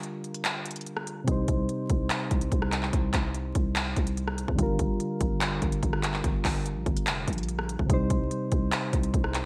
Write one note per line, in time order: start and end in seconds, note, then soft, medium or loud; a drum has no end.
0.00 1.22 D3 medium
0.00 1.23 G3 medium
0.00 1.24 F4 medium
0.00 1.26 A#4 medium
0.00 closed hi-hat medium
0.24 closed hi-hat soft
0.34 closed hi-hat medium
0.45 clap loud
0.45 closed hi-hat medium
0.66 closed hi-hat medium
0.71 closed hi-hat medium
0.76 closed hi-hat medium
0.81 closed hi-hat soft
0.86 closed hi-hat medium
0.97 cross-stick medium
1.07 closed hi-hat medium
1.24 1.47 C2 loud
1.24 4.53 C3 medium
1.24 4.54 G3 medium
1.24 kick loud
1.24 closed hi-hat medium
1.29 4.55 D#4 medium
1.29 4.56 C5 medium
1.48 1.68 C2 loud
1.48 kick loud
1.48 closed hi-hat medium
1.69 closed hi-hat medium
1.90 2.10 C2 loud
1.90 kick loud
1.90 closed hi-hat medium
2.10 clap loud
2.10 closed hi-hat medium
2.31 2.51 C2 loud
2.31 kick loud
2.31 closed hi-hat medium
2.41 closed hi-hat medium
2.52 2.91 C2 loud
2.52 kick loud
2.52 closed hi-hat medium
2.62 cross-stick medium
2.72 clap medium
2.72 closed hi-hat medium
2.83 clap medium
2.93 3.13 C2 loud
2.93 kick loud
2.93 closed hi-hat medium
3.14 3.53 C2 loud
3.14 kick medium
3.14 clap medium
3.14 closed hi-hat medium
3.34 closed hi-hat medium
3.55 3.95 C2 loud
3.55 kick loud
3.55 closed hi-hat medium
3.76 clap loud
3.76 closed hi-hat medium
3.96 4.46 C2 loud
3.96 kick medium
3.96 closed hi-hat medium
4.07 closed hi-hat medium
4.17 closed hi-hat medium
4.28 cross-stick medium
4.38 closed hi-hat medium
4.48 4.58 D#2 loud
4.48 kick medium
4.55 4.78 G1 loud
4.55 7.84 D3 medium
4.55 7.85 G3 medium
4.55 kick loud
4.55 closed hi-hat medium
4.60 7.86 F4 medium
4.60 7.88 A#4 medium
4.79 4.99 G1 loud
4.79 kick medium
4.79 closed hi-hat medium
5.00 closed hi-hat medium
5.21 5.60 G1 loud
5.21 kick loud
5.21 closed hi-hat medium
5.41 clap loud
5.41 closed hi-hat medium
5.62 5.82 G1 loud
5.62 kick medium
5.62 closed hi-hat medium
5.72 closed hi-hat medium
5.83 6.22 G1 loud
5.83 kick loud
5.83 closed hi-hat medium
5.93 cross-stick medium
6.03 clap medium
6.03 closed hi-hat medium
6.14 clap medium
6.24 6.44 G1 loud
6.24 kick loud
6.24 closed hi-hat medium
6.45 6.77 G1 loud
6.45 kick medium
6.45 clap medium
6.45 open hi-hat medium
6.66 closed hi-hat medium
6.76 6.86 A#1 loud
6.86 7.08 G1 loud
6.86 kick loud
6.86 closed hi-hat soft
6.97 closed hi-hat medium
7.07 7.27 F1 loud
7.07 clap loud
7.07 closed hi-hat medium
7.28 7.77 A#1 loud
7.28 kick medium
7.28 closed hi-hat medium
7.33 closed hi-hat medium
7.38 closed hi-hat medium
7.43 closed hi-hat soft
7.49 closed hi-hat medium
7.59 cross-stick medium
7.69 closed hi-hat medium
7.79 7.89 G1 loud
7.79 kick medium
7.86 8.09 C2 loud
7.86 9.45 C3 medium
7.86 9.45 G3 medium
7.86 kick loud
7.86 closed hi-hat medium
7.91 9.45 D#4 medium
7.91 9.45 C5 medium
8.10 8.30 C2 loud
8.10 kick loud
8.10 closed hi-hat medium
8.31 closed hi-hat medium
8.52 8.72 C2 loud
8.52 kick loud
8.52 closed hi-hat medium
8.72 clap loud
8.72 closed hi-hat medium
8.93 9.13 C2 loud
8.93 kick loud
8.93 closed hi-hat medium
9.03 closed hi-hat medium
9.14 9.45 C2 loud
9.14 kick loud
9.14 closed hi-hat medium
9.24 cross-stick medium
9.34 clap medium
9.34 closed hi-hat medium